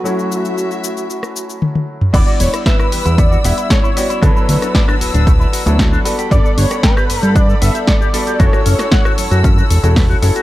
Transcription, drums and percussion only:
0.06 shaker soft
0.19 shaker soft
0.32 shaker medium
0.45 shaker soft
0.58 shaker soft
0.71 shaker soft
0.84 shaker medium
0.97 shaker soft
1.10 shaker soft
1.23 cross-stick medium
1.23 shaker soft
1.36 shaker medium
1.50 shaker soft
1.62 high tom medium
1.75 high tom medium
2.01 mid tom medium
2.14 kick loud
2.14 closed hi-hat medium
2.14 crash loud
2.14 shaker soft
2.28 shaker soft
2.40 open hi-hat loud
2.40 shaker medium
2.54 cross-stick medium
2.54 closed hi-hat medium
2.54 shaker soft
2.66 kick loud
2.66 snare loud
2.66 closed hi-hat medium
2.66 shaker soft
2.79 cross-stick medium
2.79 shaker soft
2.92 open hi-hat loud
2.92 shaker medium
3.06 closed hi-hat medium
3.06 shaker soft
3.18 kick loud
3.18 closed hi-hat medium
3.18 shaker soft
3.32 shaker soft
3.44 open hi-hat loud
3.44 shaker medium
3.58 closed hi-hat medium
3.58 shaker soft
3.70 kick loud
3.70 snare loud
3.70 closed hi-hat medium
3.70 shaker soft
3.85 shaker soft
3.97 open hi-hat loud
3.97 shaker medium
4.10 closed hi-hat medium
4.10 shaker soft
4.22 kick loud
4.22 closed hi-hat medium
4.22 shaker soft
4.37 shaker soft
4.49 open hi-hat loud
4.49 shaker medium
4.62 cross-stick medium
4.62 closed hi-hat medium
4.62 shaker soft
4.75 kick loud
4.75 snare loud
4.75 closed hi-hat medium
4.75 shaker soft
4.89 cross-stick medium
4.89 shaker soft
5.01 open hi-hat loud
5.01 shaker medium
5.14 closed hi-hat medium
5.14 shaker soft
5.27 kick loud
5.27 closed hi-hat medium
5.27 shaker soft
5.41 shaker soft
5.53 open hi-hat loud
5.53 shaker medium
5.67 closed hi-hat medium
5.67 shaker soft
5.79 kick loud
5.79 snare loud
5.79 closed hi-hat medium
5.79 shaker soft
5.93 shaker soft
6.05 open hi-hat loud
6.05 shaker medium
6.19 closed hi-hat medium
6.19 shaker soft
6.31 kick loud
6.31 closed hi-hat medium
6.31 shaker soft
6.46 shaker soft
6.58 open hi-hat loud
6.58 shaker medium
6.71 cross-stick medium
6.71 closed hi-hat medium
6.71 shaker soft
6.83 kick loud
6.83 snare loud
6.83 closed hi-hat medium
6.83 shaker soft
6.97 cross-stick medium
6.97 shaker soft
7.10 open hi-hat loud
7.10 shaker medium
7.23 closed hi-hat medium
7.23 shaker soft
7.36 kick loud
7.36 closed hi-hat medium
7.36 shaker soft
7.50 shaker soft
7.62 open hi-hat loud
7.62 shaker medium
7.75 closed hi-hat medium
7.75 shaker soft
7.88 kick loud
7.88 snare loud
7.88 closed hi-hat medium
7.88 shaker soft
8.02 shaker soft
8.14 open hi-hat loud
8.14 shaker medium
8.27 closed hi-hat medium
8.27 shaker soft
8.40 kick loud
8.40 closed hi-hat medium
8.40 shaker soft
8.53 cross-stick medium
8.53 shaker soft
8.66 open hi-hat loud
8.66 shaker medium
8.79 cross-stick medium
8.79 snare soft
8.79 closed hi-hat soft
8.79 shaker soft
8.92 kick loud
8.92 snare loud
8.92 closed hi-hat medium
8.92 shaker soft
9.05 cross-stick medium
9.05 shaker soft
9.18 open hi-hat loud
9.18 shaker medium
9.31 closed hi-hat medium
9.31 shaker soft
9.44 kick loud
9.44 closed hi-hat medium
9.44 shaker soft
9.58 shaker soft
9.70 open hi-hat loud
9.70 shaker medium
9.84 closed hi-hat soft
9.84 shaker soft
9.96 kick loud
9.96 snare loud
9.96 open hi-hat medium
9.96 shaker soft
10.11 shaker soft
10.22 open hi-hat loud
10.22 shaker medium
10.36 closed hi-hat medium
10.36 shaker soft

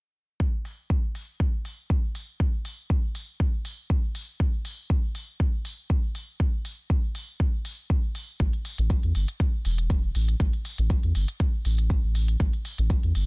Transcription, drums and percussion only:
0.40 kick loud
0.65 open hi-hat medium
0.90 kick loud
1.15 open hi-hat medium
1.40 kick loud
1.65 open hi-hat medium
1.90 kick loud
2.15 open hi-hat medium
2.40 kick loud
2.65 open hi-hat medium
2.90 kick loud
3.15 open hi-hat medium
3.40 kick loud
3.65 open hi-hat medium
3.90 kick loud
4.15 open hi-hat medium
4.40 kick loud
4.65 open hi-hat medium
4.90 kick loud
5.15 open hi-hat medium
5.40 kick loud
5.65 open hi-hat medium
5.90 kick loud
6.15 open hi-hat medium
6.40 kick loud
6.65 open hi-hat medium
6.90 kick loud
7.15 open hi-hat medium
7.40 kick loud
7.65 open hi-hat medium
7.90 kick loud
8.15 open hi-hat medium
8.40 kick loud
8.40 closed hi-hat soft
8.53 closed hi-hat soft
8.65 open hi-hat medium
8.78 closed hi-hat soft
8.90 kick loud
8.90 closed hi-hat medium
9.03 closed hi-hat soft
9.15 open hi-hat medium
9.28 closed hi-hat soft
9.40 kick loud
9.40 closed hi-hat soft
9.65 open hi-hat medium
9.78 closed hi-hat soft
9.90 kick loud
9.90 closed hi-hat soft
10.15 open hi-hat medium
10.28 closed hi-hat soft
10.40 kick loud
10.40 closed hi-hat soft
10.53 closed hi-hat soft
10.65 open hi-hat medium
10.78 closed hi-hat soft
10.90 kick loud
10.90 closed hi-hat medium
11.03 closed hi-hat soft
11.15 open hi-hat medium
11.28 closed hi-hat soft
11.40 kick loud
11.40 closed hi-hat medium
11.65 open hi-hat medium
11.78 closed hi-hat soft
11.90 kick loud
11.90 closed hi-hat soft
12.15 open hi-hat medium
12.28 closed hi-hat soft
12.40 kick loud
12.40 closed hi-hat soft
12.53 closed hi-hat soft
12.65 open hi-hat medium
12.78 closed hi-hat soft
12.90 kick loud
12.90 closed hi-hat medium
13.03 closed hi-hat soft
13.15 open hi-hat medium

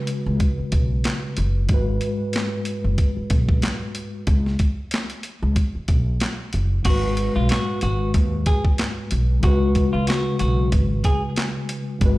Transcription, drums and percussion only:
0.07 closed hi-hat medium
0.40 kick medium
0.40 closed hi-hat medium
0.72 kick loud
0.72 closed hi-hat medium
1.04 snare loud
1.04 clap medium
1.04 closed hi-hat medium
1.37 closed hi-hat medium
1.69 kick loud
1.69 closed hi-hat medium
2.01 closed hi-hat medium
2.33 snare loud
2.33 clap medium
2.33 closed hi-hat loud
2.65 closed hi-hat medium
2.98 kick medium
2.98 closed hi-hat medium
3.30 kick loud
3.30 closed hi-hat medium
3.49 kick loud
3.62 snare loud
3.62 clap loud
3.62 closed hi-hat medium
3.95 closed hi-hat medium
4.27 kick loud
4.27 closed hi-hat medium
4.46 snare soft
4.59 kick medium
4.59 closed hi-hat medium
4.91 snare loud
4.91 clap medium
4.91 closed hi-hat loud
5.10 closed hi-hat medium
5.23 closed hi-hat medium
5.56 kick medium
5.56 closed hi-hat medium
5.88 kick loud
5.88 closed hi-hat medium
6.20 snare loud
6.20 clap medium
6.20 closed hi-hat medium
6.53 closed hi-hat medium
6.85 kick loud
6.85 closed hi-hat medium
6.85 crash loud
7.17 closed hi-hat medium
7.49 snare loud
7.49 clap medium
7.49 closed hi-hat loud
7.81 closed hi-hat medium
8.14 kick medium
8.14 closed hi-hat medium
8.46 kick loud
8.46 closed hi-hat medium
8.65 kick loud
8.78 snare loud
8.78 clap medium
8.78 closed hi-hat medium
9.11 closed hi-hat loud
9.43 kick loud
9.43 closed hi-hat medium
9.75 kick medium
9.75 closed hi-hat medium
10.07 snare loud
10.07 clap medium
10.07 closed hi-hat loud
10.39 closed hi-hat medium
10.72 kick medium
10.72 closed hi-hat medium
11.04 kick loud
11.04 closed hi-hat medium
11.36 snare loud
11.36 clap loud
11.36 closed hi-hat medium
11.69 closed hi-hat medium
12.01 kick loud
12.01 closed hi-hat medium

